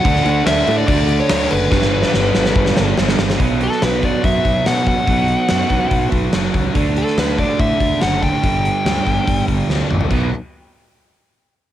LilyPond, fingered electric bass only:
\new Staff \with { instrumentName = "Fingered electric bass" } { \clef bass \time 4/4 \key b \minor \tempo 4 = 143 d,8 d,8 d,8 a,8 d,4 d,8 fis,,8 | g,,4 g,,8 g,,8 g,,8 g,,8 g,,8 g,,8 | b,,4 b,,4 fis,8 b,,8 b,4 | b,,4 fis,8 b,,8 b,,8 b,,8 fis,,8 cis,8 |
d,4 d,4 a,8 d,8 fis,,4 | g,,4 d,8 g,,8 g,,8 g,,8 d,8 a,,8 | b,,8 r2. r8 | }